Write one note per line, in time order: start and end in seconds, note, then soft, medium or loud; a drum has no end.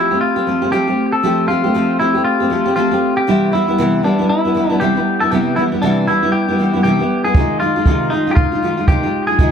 0.00 0.11 F3 medium
0.00 0.11 A3 soft
0.00 0.11 C4 soft
0.00 0.20 E4 medium
0.11 0.37 A3 soft
0.11 0.36 C4 soft
0.11 0.35 G4 soft
0.21 0.72 F4 medium
0.36 0.47 A3 soft
0.36 0.47 C4 soft
0.36 0.46 G4 soft
0.47 0.62 F3 soft
0.47 0.63 A3 medium
0.47 0.62 C4 soft
0.47 0.61 G4 medium
0.62 0.72 A3 soft
0.62 0.72 C4 soft
0.62 0.72 G4 soft
0.72 0.88 F3 medium
0.72 0.88 A3 medium
0.72 0.88 C4 medium
0.72 1.12 G4 medium
0.72 0.86 G4 medium
0.87 1.22 A3 soft
0.87 1.23 C4 soft
0.87 1.23 G4 soft
1.12 1.47 A4 medium
1.23 1.47 F3 medium
1.23 1.48 A3 medium
1.23 1.49 C4 medium
1.23 1.49 G4 medium
1.48 1.64 F3 soft
1.48 1.64 A3 medium
1.48 1.64 C4 medium
1.48 1.99 F4 medium
1.48 1.63 G4 medium
1.64 1.74 A3 soft
1.64 1.74 C4 soft
1.64 1.74 G4 soft
1.74 1.98 F3 medium
1.74 1.99 A3 medium
1.74 2.00 C4 medium
1.74 2.00 G4 medium
1.99 2.15 F3 soft
1.99 2.15 A3 soft
1.99 2.15 C4 medium
1.99 2.24 E4 medium
1.99 2.13 G4 medium
2.14 2.41 A3 soft
2.14 2.40 C4 soft
2.14 2.39 G4 soft
2.25 2.75 F4 medium
2.40 2.50 A3 soft
2.40 2.51 C4 soft
2.40 2.51 G4 soft
2.50 2.66 F3 medium
2.50 2.66 A3 medium
2.50 2.66 C4 medium
2.50 2.64 G4 medium
2.65 2.76 A3 soft
2.65 2.76 C4 soft
2.65 2.76 G4 soft
2.76 2.91 F3 medium
2.76 2.92 A3 medium
2.76 2.91 C4 medium
2.76 3.17 F4 medium
2.76 2.90 G4 medium
2.91 3.28 A3 soft
2.91 3.28 C4 soft
2.91 3.27 G4 soft
3.17 3.50 G4 medium
3.27 3.53 C3 medium
3.27 3.51 E3 medium
3.27 3.53 G3 medium
3.27 3.53 B3 medium
3.27 3.53 E4 medium
3.53 3.68 E3 soft
3.53 3.69 G3 medium
3.53 3.68 B3 medium
3.53 4.04 E4 medium
3.53 3.67 E4 medium
3.68 3.78 G3 soft
3.68 3.79 B3 soft
3.68 3.78 E4 soft
3.78 4.04 C3 medium
3.78 4.02 E3 medium
3.78 4.03 G3 medium
3.78 4.04 B3 medium
3.78 4.04 E4 medium
4.03 4.19 E3 soft
4.03 4.19 G3 medium
4.03 4.19 B3 medium
4.03 4.29 D4 medium
4.03 4.18 E4 medium
4.19 4.46 G3 soft
4.19 4.45 B3 soft
4.19 4.44 E4 soft
4.29 4.71 E4 medium
4.45 4.54 G3 soft
4.45 4.55 B3 soft
4.45 4.55 E4 soft
4.55 4.70 E3 soft
4.55 4.70 G3 soft
4.55 4.70 B3 medium
4.55 4.69 E4 medium
4.70 4.80 G3 soft
4.70 4.80 B3 soft
4.70 4.82 D4 medium
4.70 4.80 E4 medium
4.80 4.95 C3 medium
4.80 4.96 E3 medium
4.80 4.96 G3 medium
4.80 4.96 B3 medium
4.80 4.95 E4 medium
4.80 5.20 G4 medium
4.96 5.22 G3 soft
4.96 5.21 B3 soft
4.96 5.20 E4 soft
5.20 5.31 G3 soft
5.20 5.32 B3 soft
5.20 5.31 E4 soft
5.20 5.31 A4 medium
5.31 5.57 C3 medium
5.31 5.55 E3 medium
5.31 5.56 G3 medium
5.31 5.57 B3 medium
5.31 5.58 E4 medium
5.31 5.56 G4 medium
5.56 5.72 E3 medium
5.56 5.72 G3 medium
5.56 5.72 B3 medium
5.56 5.63 E4 medium
5.56 5.71 E4 medium
5.72 5.82 G3 soft
5.72 5.83 B3 soft
5.72 5.82 E4 soft
5.82 6.08 C3 medium
5.82 6.06 E3 medium
5.82 6.07 G3 medium
5.82 6.08 B3 medium
5.82 6.08 D4 medium
5.82 6.09 E4 medium
6.07 6.23 E3 soft
6.07 6.23 G3 soft
6.07 6.23 B3 medium
6.07 6.32 E4 medium
6.07 6.21 E4 soft
6.23 6.49 G3 soft
6.23 6.48 B3 soft
6.23 6.47 E4 soft
6.32 6.82 G4 medium
6.48 6.58 G3 soft
6.48 6.59 B3 soft
6.48 6.59 E4 soft
6.59 6.74 E3 soft
6.59 6.74 G3 soft
6.59 6.74 B3 soft
6.59 6.72 E4 soft
6.74 6.84 G3 soft
6.74 6.84 B3 soft
6.74 6.84 E4 soft
6.83 6.99 C3 medium
6.83 6.99 E3 medium
6.83 7.00 G3 medium
6.83 6.99 B3 medium
6.83 6.98 E4 medium
6.83 7.24 G4 medium
6.99 7.26 G3 soft
6.99 7.25 B3 soft
6.99 7.24 E4 soft
7.24 7.36 G3 soft
7.24 7.36 B3 soft
7.24 7.35 E4 soft
7.24 7.59 G#4 medium
7.35 7.61 C3 medium
7.35 7.59 D#3 medium
7.35 7.60 G#3 medium
7.35 7.61 D#4 medium
7.35 7.62 F4 medium
7.35 kick medium
7.60 7.76 D#3 soft
7.60 7.76 G#3 soft
7.60 7.76 D#4 medium
7.60 8.13 F4 medium
7.60 7.75 F4 soft
7.76 7.86 G#3 soft
7.76 7.86 D#4 soft
7.76 7.86 F4 soft
7.86 8.12 C3 medium
7.86 8.10 D#3 medium
7.86 8.11 G#3 medium
7.86 8.12 D#4 medium
7.86 8.12 F4 medium
7.86 kick medium
8.10 8.27 D#3 soft
8.10 8.27 G#3 soft
8.10 8.31 D#4 medium
8.10 8.27 D#4 soft
8.10 8.26 F4 medium
8.27 8.53 G#3 soft
8.27 8.52 D#4 soft
8.27 8.51 F4 soft
8.31 8.35 G4 medium
8.35 8.88 F4 medium
8.35 kick loud
8.52 8.62 G#3 soft
8.52 8.63 D#4 soft
8.52 8.62 F4 soft
8.62 8.78 D#3 soft
8.62 8.78 G#3 soft
8.62 8.78 D#4 medium
8.62 8.76 F4 medium
8.77 8.88 G#3 soft
8.77 8.88 D#4 soft
8.77 8.88 F4 soft
8.88 9.03 C3 medium
8.88 9.04 D#3 medium
8.88 9.04 G#3 medium
8.88 9.03 D#4 medium
8.88 9.02 F4 medium
8.88 9.27 G4 medium
8.88 kick medium
9.03 9.30 G#3 soft
9.03 9.29 D#4 soft
9.03 9.28 F4 soft
9.27 9.39 D#4 soft
9.27 9.39 F4 soft
9.27 9.51 G#4 medium
9.31 9.38 G#3 soft
9.39 9.51 C3 medium
9.39 9.51 D#3 medium
9.39 9.51 G#3 medium
9.39 9.51 D#4 medium
9.39 9.51 F4 medium
9.39 kick medium